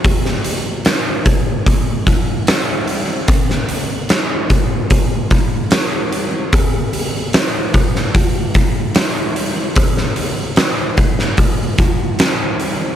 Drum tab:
HH |o-o-o-o-o-o-o-o-|o-o-o-o-o-o-o-o-|o-o-o-o-o-o-o-o-|o-o-o-o-o-o-o-o-|
SD |-o--o-------o---|-o--o-------o---|----o--o----o---|-o--o--o----o---|
BD |o-----o-o-o-----|o-----o-o-o-----|o-----o-o-o-----|o-----o-o-o-----|